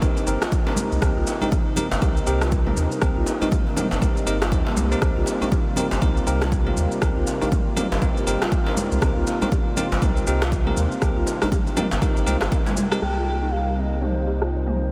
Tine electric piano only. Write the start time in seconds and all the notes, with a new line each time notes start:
0.02 C4 D#4 G4 A#4
0.27 C4 D#4 G4 A#4
0.67 C4 D#4 G4 A#4
1.02 C4 D#4 G4 A#4
1.42 C4 D#4 G4 A#4
1.77 C4 D#4 G4 A#4
2.02 C4 D#4 G4 A#4
2.27 C4 D#4 G4 A#4
2.67 C4 D#4 G4 A#4
3.02 C4 D#4 G4 A#4
3.41 C4 D#4 G4 A#4
3.77 C4 D#4 G4 A#4
4.02 C4 D#4 G4 A#4
4.27 C4 D#4 G4 A#4
4.52 C4 D#4 G4 A#4
4.92 C4 D#4 G4 A#4
5.02 C4 D#4 A#4
5.42 C4 D#4 G4 A#4
5.77 C4 D#4 G4 A#4
6.02 C4 D#4 G4 A#4
6.27 C4 D#4 G4 A#4
6.66 C4 D#4 G4 A#4
7.02 C4 D#4 G4 A#4
7.42 C4 D#4 G4 A#4
7.77 C4 D#4 G4 A#4
8.02 C4 D#4 G4 A#4
8.27 C4 D#4 G4 A#4
8.67 C4 D#4 G4 A#4
9.02 C4 D#4 G4 A#4
9.42 C4 D#4 G4 A#4
9.77 C4 D#4 G4 A#4
10.02 C4 D#4 G4 A#4
10.27 C4 D#4 G4 A#4
10.67 C4 D#4 G4 A#4
11.02 C4 D#4 G4 A#4
11.42 C4 D#4 G4 A#4
11.77 C4 D#4 G4 A#4
12.02 C4 D#4 G4 A#4
12.26 C4 D#4 G4 A#4
12.52 C4 D#4 G4 A#4
12.92 C4 D#4 G4 A#4